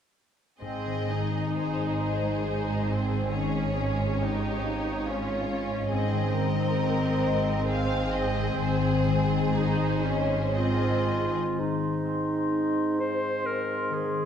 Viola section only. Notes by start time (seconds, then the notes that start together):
0.60 C4
1.08 D#4
2.46 D#4
2.91 C4
3.34 C#4
3.77 C#4
4.21 D#4
5.06 C#4
5.49 C#4
5.91 C4
9.54 D#4
10.02 C#4
10.53 C4